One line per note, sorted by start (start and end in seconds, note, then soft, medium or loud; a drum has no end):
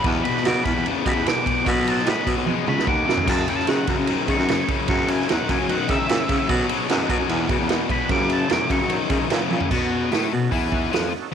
0.04 0.22 E2 medium
0.04 0.22 E2 loud
0.04 0.23 B2 medium
0.04 0.24 B3 loud
0.04 0.24 D4 medium
0.04 0.24 F#4 medium
0.04 0.24 G4 loud
0.04 kick loud
0.04 ride loud
0.24 0.43 E2 medium
0.24 0.43 B2 medium
0.24 0.44 B3 medium
0.24 0.44 D4 medium
0.24 0.44 F#4 medium
0.24 0.45 G4 medium
0.24 0.44 B5 loud
0.24 ride medium
0.37 snare soft
0.45 0.64 E2 medium
0.45 0.62 B2 loud
0.45 0.64 C#3 medium
0.45 0.64 B3 medium
0.45 0.64 D4 medium
0.45 0.65 F#4 medium
0.45 0.65 G4 loud
0.45 0.64 D6 loud
0.45 snare loud
0.45 ride loud
0.65 0.83 E2 medium
0.65 0.74 E2 loud
0.65 0.84 B2 medium
0.65 0.82 B3 medium
0.65 0.82 D4 medium
0.65 0.84 F#4 medium
0.65 0.84 G4 medium
0.65 0.85 B5 loud
0.65 kick medium
0.65 ride medium
0.75 0.92 E2 medium
0.83 1.04 E2 medium
0.83 1.04 C#3 medium
0.83 1.03 B3 medium
0.83 1.03 D4 medium
0.83 1.04 F#4 medium
0.83 1.04 G4 medium
0.83 ride loud
1.06 1.24 E2 medium
1.06 1.15 B2 loud
1.06 1.24 C#3 medium
1.06 1.24 B3 medium
1.06 1.24 D4 medium
1.06 1.24 F#4 medium
1.06 1.25 G4 medium
1.06 1.27 B5 medium
1.06 kick medium
1.06 ride medium
1.15 1.33 E2 medium
1.25 1.44 E2 medium
1.25 1.44 B2 medium
1.25 1.42 B3 loud
1.25 1.44 D4 medium
1.25 1.44 F#4 medium
1.25 1.44 G4 loud
1.25 1.66 D6 loud
1.25 snare loud
1.25 ride loud
1.44 1.64 E2 medium
1.44 1.64 B2 medium
1.44 1.64 B3 medium
1.44 1.65 D4 medium
1.44 1.63 F#4 medium
1.44 1.65 G4 medium
1.44 kick medium
1.44 ride medium
1.64 1.84 B2 medium
1.64 2.01 B2 loud
1.64 1.84 F#3 medium
1.64 1.84 C#4 loud
1.64 1.84 D#4 medium
1.64 1.84 F#4 medium
1.64 1.85 A4 loud
1.64 kick loud
1.64 ride loud
1.70 1.90 B5 medium
1.85 2.04 B2 medium
1.85 2.04 F#3 medium
1.85 2.03 C#4 medium
1.85 2.03 D#4 medium
1.85 2.04 F#4 medium
1.85 2.05 A4 medium
1.85 ride medium
1.90 2.08 A5 loud
1.99 snare soft
2.04 2.15 A2 loud
2.04 2.24 B2 medium
2.04 2.25 G#3 medium
2.04 2.24 C#4 medium
2.04 2.24 D#4 medium
2.04 2.24 F#4 medium
2.04 2.25 A4 loud
2.04 snare loud
2.04 ride loud
2.10 2.28 B5 loud
2.25 2.45 B2 medium
2.25 2.35 B2 loud
2.25 2.45 F#3 medium
2.25 2.45 C#4 medium
2.25 2.45 D#4 medium
2.25 2.45 F#4 medium
2.25 2.46 A4 medium
2.25 kick medium
2.25 ride medium
2.37 2.54 B2 medium
2.46 2.65 B2 medium
2.46 2.65 G#3 medium
2.46 2.66 C#4 medium
2.46 2.66 D#4 medium
2.46 2.65 F#4 medium
2.46 2.66 G#4 medium
2.46 high tom medium
2.67 2.85 C#2 medium
2.67 2.85 B2 medium
2.67 2.85 G#3 medium
2.67 2.84 C#4 medium
2.67 2.84 D#4 medium
2.67 2.84 F#4 medium
2.67 2.85 A4 medium
2.67 2.87 B5 medium
2.67 mid tom medium
2.79 snare medium
2.85 3.05 D#2 medium
2.85 3.05 B2 medium
2.85 3.06 F#3 medium
2.85 3.04 C#4 loud
2.85 3.04 D#4 medium
2.85 3.05 F#4 medium
2.85 3.05 A4 loud
2.85 3.27 D6 loud
2.85 kick medium
3.05 3.25 F#2 medium
3.05 3.25 B2 medium
3.05 3.25 F#3 medium
3.05 3.22 C#4 medium
3.05 3.25 D#4 medium
3.05 3.25 F#4 medium
3.05 3.26 A4 medium
3.09 snare loud
3.17 floor tom medium
3.23 3.45 F#2 medium
3.23 3.45 C#3 medium
3.23 3.44 C#4 medium
3.23 3.45 E4 medium
3.23 3.44 G#4 medium
3.23 3.45 A#4 loud
3.28 3.45 F#2 loud
3.28 3.48 A5 medium
3.28 kick loud
3.28 splash medium
3.28 crash loud
3.46 3.66 F#2 medium
3.46 3.66 C#3 medium
3.46 3.65 C#4 medium
3.46 3.64 E4 medium
3.46 3.65 G#4 medium
3.46 3.66 A#4 medium
3.46 3.68 A5 medium
3.46 ride medium
3.59 snare soft
3.65 3.86 F#2 medium
3.65 3.85 C#3 loud
3.65 3.86 D#3 medium
3.65 3.85 C#4 medium
3.65 3.85 E4 medium
3.65 3.86 G#4 medium
3.65 3.86 A#4 loud
3.65 snare loud
3.65 ride medium
3.69 3.88 F#5 medium
3.87 4.06 F#2 medium
3.87 3.97 F#2 loud
3.87 4.06 C#3 medium
3.87 4.03 C#4 medium
3.87 4.04 E4 medium
3.87 4.03 G#4 medium
3.87 4.04 A#4 medium
3.87 kick medium
3.87 ride medium
3.99 4.16 F#2 medium
4.04 4.26 F#2 medium
4.04 4.25 C#4 medium
4.04 4.26 E4 medium
4.04 4.25 G#4 medium
4.04 4.25 A#4 loud
4.04 ride loud
4.09 4.26 D#3 medium
4.26 4.46 F#2 medium
4.26 4.37 C#3 medium
4.26 4.47 D#3 medium
4.26 4.45 C#4 medium
4.26 4.45 E4 medium
4.26 4.45 G#4 medium
4.26 4.47 A#4 medium
4.26 kick medium
4.26 ride medium
4.31 4.69 C#6 loud
4.39 4.55 F#2 medium
4.46 4.67 F#2 medium
4.46 4.67 C#3 loud
4.46 4.66 C#4 medium
4.46 4.66 E4 medium
4.46 4.66 G#4 medium
4.46 4.67 C#5 loud
4.46 snare loud
4.46 ride loud
4.68 4.86 F#2 medium
4.68 4.87 C#3 medium
4.68 4.86 C#4 medium
4.68 4.87 E4 medium
4.68 4.88 G#4 medium
4.68 4.88 A#4 medium
4.68 kick medium
4.68 ride medium
4.88 5.23 F#2 loud
4.88 5.07 F#2 medium
4.88 5.07 C#3 loud
4.88 5.07 C#4 loud
4.88 5.07 E4 medium
4.88 5.07 G#4 medium
4.88 5.08 A#4 loud
4.88 5.09 C#6 loud
4.88 kick loud
4.88 ride medium
5.08 5.27 F#2 medium
5.08 5.27 C#3 medium
5.08 5.27 C#4 medium
5.08 5.27 E4 medium
5.08 5.27 G#4 medium
5.08 5.27 A#4 medium
5.08 5.29 G#5 medium
5.08 ride medium
5.21 snare soft
5.28 5.38 E2 loud
5.28 5.47 F#2 medium
5.28 5.47 D#3 medium
5.28 5.47 C#4 loud
5.28 5.47 E4 medium
5.28 5.47 G#4 medium
5.28 5.47 A#4 loud
5.28 snare loud
5.28 ride loud
5.32 5.50 F#5 medium
5.48 5.58 F#2 loud
5.48 5.67 F#2 medium
5.48 5.67 C#3 medium
5.48 5.67 C#4 medium
5.48 5.67 E4 medium
5.48 5.68 G#4 medium
5.48 5.68 A#4 medium
5.48 5.70 G#5 medium
5.48 kick medium
5.48 ride medium
5.61 5.77 F#3 medium
5.69 5.87 F#2 medium
5.69 5.87 D#3 loud
5.69 5.87 C#4 medium
5.69 5.87 E4 medium
5.69 5.87 G#4 medium
5.69 5.88 A#4 medium
5.69 5.89 F#5 medium
5.69 ride loud
5.88 6.07 F#2 medium
5.88 5.98 C#3 medium
5.88 6.07 D#3 medium
5.88 6.07 C#4 medium
5.88 6.08 E4 medium
5.88 6.07 G#4 medium
5.88 6.08 A#4 medium
5.88 6.48 E5 medium
5.88 kick medium
5.88 ride medium
6.08 6.27 F#2 medium
6.08 6.18 A#2 loud
6.08 6.27 C#3 loud
6.08 6.28 C#4 loud
6.08 6.28 E4 medium
6.08 6.29 G#4 medium
6.08 6.29 A#4 loud
6.08 snare loud
6.08 ride loud
6.29 6.47 F#2 medium
6.29 6.47 C#3 medium
6.29 6.38 C#3 medium
6.29 6.45 C#4 medium
6.29 6.48 E4 medium
6.29 6.49 G#4 medium
6.29 6.48 C#5 medium
6.29 kick medium
6.29 ride medium
6.46 6.67 B2 medium
6.46 6.66 B2 loud
6.46 6.67 F#3 loud
6.46 6.67 C#4 loud
6.46 6.67 D#4 loud
6.46 6.67 F#4 loud
6.46 6.67 A4 loud
6.46 kick loud
6.46 ride loud
6.68 6.87 B2 medium
6.68 6.87 F#3 medium
6.68 6.87 C#4 medium
6.68 6.87 D#4 medium
6.68 6.88 F#4 medium
6.68 6.88 G#4 loud
6.68 ride medium
6.88 7.07 F#2 loud
6.88 7.07 B2 medium
6.88 7.08 G#3 loud
6.88 7.07 C#4 loud
6.88 7.07 D#4 loud
6.88 7.07 F#4 loud
6.88 7.08 A4 loud
6.88 snare loud
6.88 ride loud
7.08 7.27 B2 medium
7.08 7.18 B2 loud
7.08 7.28 F#3 medium
7.08 7.28 C#4 medium
7.08 7.28 D#4 medium
7.08 7.28 F#4 medium
7.08 7.28 G#4 loud
7.08 kick medium
7.08 ride medium
7.19 7.28 F#2 medium
7.29 7.47 E2 medium
7.29 7.46 E2 loud
7.29 7.47 B2 loud
7.29 7.49 B3 medium
7.29 7.48 D4 medium
7.29 7.49 F#4 medium
7.29 7.49 G#4 loud
7.29 ride loud
7.49 7.67 E2 medium
7.49 7.58 B2 loud
7.49 7.68 C#3 medium
7.49 7.69 B3 medium
7.49 7.69 D4 medium
7.49 7.69 F#4 medium
7.49 7.69 G#4 medium
7.49 kick medium
7.49 ride medium
7.60 7.77 E2 medium
7.69 7.87 E2 medium
7.69 7.88 B2 loud
7.69 7.89 B3 loud
7.69 7.89 D4 loud
7.69 7.89 F#4 loud
7.69 7.90 G#4 loud
7.69 snare loud
7.69 ride loud
7.89 8.08 E2 medium
7.89 8.08 B2 medium
7.89 8.09 B3 medium
7.89 8.09 D4 medium
7.89 8.10 F#4 medium
7.89 8.09 G#4 medium
7.89 8.10 B5 loud
7.89 kick medium
7.89 ride medium
8.09 8.44 F#2 loud
8.09 8.28 F#2 medium
8.09 8.29 C#3 loud
8.09 8.29 A#3 loud
8.09 8.28 C#4 medium
8.09 8.29 E4 loud
8.09 8.30 G#4 loud
8.09 8.30 D6 loud
8.09 kick loud
8.09 ride loud
8.29 8.48 F#2 medium
8.29 8.48 C#3 medium
8.29 8.48 A#3 medium
8.29 8.48 C#4 medium
8.29 8.49 E4 medium
8.29 8.48 G#4 medium
8.29 8.51 A5 medium
8.29 ride medium
8.49 8.59 E2 loud
8.49 8.67 F#2 medium
8.49 8.68 D#3 medium
8.49 8.68 A#3 loud
8.49 8.69 C#4 medium
8.49 8.69 E4 medium
8.49 8.69 G#4 loud
8.49 8.71 D6 loud
8.49 snare loud
8.49 ride loud
8.68 8.87 F#2 medium
8.68 8.79 F#2 loud
8.68 8.88 C#3 medium
8.68 8.88 A#3 medium
8.68 8.88 C#4 medium
8.68 8.88 E4 medium
8.68 8.90 C#6 loud
8.68 kick medium
8.68 ride medium
8.81 8.98 F#3 medium
8.88 9.07 F#2 medium
8.88 9.07 D#3 loud
8.88 9.09 A#3 medium
8.88 9.09 C#4 medium
8.88 9.09 E4 medium
8.88 9.09 G#4 medium
8.88 ride loud
9.09 9.28 F#2 medium
9.09 9.19 C#3 medium
9.09 9.28 D#3 medium
9.09 9.29 A#3 medium
9.09 9.29 C#4 medium
9.09 9.29 E4 medium
9.09 9.29 G#4 loud
9.09 kick medium
9.09 ride medium
9.30 9.48 F#2 medium
9.30 9.39 A#2 loud
9.30 9.48 C#3 medium
9.30 9.49 A#3 loud
9.30 9.50 C#4 loud
9.30 9.50 E4 loud
9.30 9.50 G#4 loud
9.30 snare loud
9.30 ride loud
9.49 9.68 F#2 medium
9.49 9.60 A#2 medium
9.49 9.68 C#3 medium
9.49 9.69 A#3 medium
9.49 9.70 C#4 medium
9.49 9.70 E4 medium
9.49 9.70 G#4 loud
9.49 high tom medium
9.60 floor tom medium
9.71 10.10 B2 medium
9.71 10.08 B2 medium
9.71 10.11 B3 medium
9.71 9.89 C#4 loud
9.71 9.90 D#4 medium
9.71 9.90 F#4 medium
9.71 9.91 A4 loud
9.71 kick loud
9.71 crash medium
9.90 10.09 C#4 medium
9.90 10.10 D#4 medium
9.90 10.10 F#4 medium
9.90 10.10 G#4 medium
10.11 10.30 A2 medium
10.11 10.31 A2 medium
10.11 10.31 A3 medium
10.11 10.30 C#4 loud
10.11 10.30 D#4 medium
10.11 10.31 F#4 loud
10.11 10.31 G#4 loud
10.11 snare loud
10.11 open hi-hat medium
10.31 10.48 B2 medium
10.31 10.51 B2 medium
10.31 10.48 C#4 medium
10.31 10.49 D#4 medium
10.31 10.48 F#4 medium
10.31 10.49 A4 medium
10.49 10.89 E2 medium
10.49 10.91 E3 medium
10.49 10.69 C#4 medium
10.49 10.70 D#4 medium
10.49 10.69 F#4 medium
10.49 10.70 A4 medium
10.49 kick medium
10.49 open hi-hat medium
10.53 10.92 E4 loud
10.70 10.89 C#4 medium
10.70 10.89 D#4 medium
10.70 10.90 F#4 medium
10.70 10.90 B4 medium
10.70 kick medium
10.90 11.11 F2 medium
10.90 11.11 F3 medium
10.90 11.09 C#4 loud
10.90 11.09 D#4 loud
10.90 11.12 F4 medium
10.90 11.10 F#4 loud
10.90 11.10 G#4 loud
10.90 snare loud
10.90 open hi-hat medium
11.10 11.30 C#4 medium
11.10 11.30 D#4 medium
11.10 11.30 F#4 medium
11.10 11.30 A4 medium